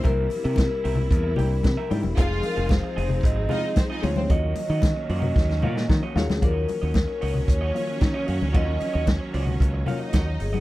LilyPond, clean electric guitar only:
\new Staff \with { instrumentName = "Clean electric guitar" } { \time 4/4 \key ees \dorian \tempo 4 = 113 <g' bes' e''>8 r16 <g' bes' e''>16 r8 <g' bes' e''>16 r8. <g' bes' g''>16 r8 <g' bes' e''>16 <g' bes' g''>16 r16 | <f' aes' ees''>8 r16 <f' aes' ees''>16 r8 <f' aes' ees''>16 r8. <f' aes' f''>16 r8 <f' aes' ees''>16 <f' aes' f''>16 r16 | <ges' des'' ees''>8 r16 <ges' des'' ees''>16 r8 <ges' des'' ees''>8 r8 <ges' des'' f''>16 r8 <ges' des'' ees''>16 <ges' des'' f''>16 r16 | <ges' des'' ees''>8 r16 <ges' des'' ees''>16 r8 <ges' des'' ees''>16 r8 <ges' des'' ees''>16 r8. <ges' des'' ees''>16 <ges' des'' f''>16 r16 |
<ges' des'' ees''>8 r16 <ges' des'' ees''>16 r8 <ges' des'' ees''>8 r8 <ges' des'' f''>16 r16 <ges' des'' ees''>16 r8 <ges' des'' ees''>16 | }